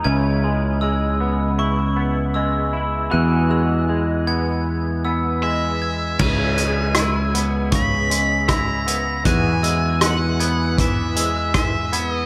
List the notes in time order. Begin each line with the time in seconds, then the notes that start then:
Already playing: G#3
0.04 C#2 C#3 C#4 E4 B4 G#6
0.44 G#3
0.81 G#3 E6
1.20 B3
1.59 E4 C#6
1.97 B3
2.34 G#3 E6
2.73 E4
3.11 E2 E3 B3 F#4 G#4 F#6
3.50 G#3 E6
3.89 G#3
4.27 B3 G#6
5.05 B3 E6
5.43 G#3 E5
5.82 G#6
6.19 C#2 C#3 C#4 E4 B4 G#5 G#6, kick, crash
6.58 G#3, closed hi-hat
6.95 E4 E6, cross-stick, closed hi-hat
7.34 B3, closed hi-hat
7.72 C#3 B5 C#6, kick, closed hi-hat
8.10 G#3, closed hi-hat
8.48 E4 A#5 E6, kick, cross-stick, closed hi-hat
8.87 B3, closed hi-hat
9.24 E2 E3 B3 F#4 G#4 G#5 F#6, kick, closed hi-hat
9.63 G#3 E6, closed hi-hat
10.01 F#5, cross-stick, closed hi-hat
10.40 B3 G#6, closed hi-hat
10.78 E3 E5, kick, closed hi-hat
11.16 G#3 E6, closed hi-hat
11.54 E5, kick, cross-stick, closed hi-hat
11.93 B3 G#6, closed hi-hat
12.10 D#5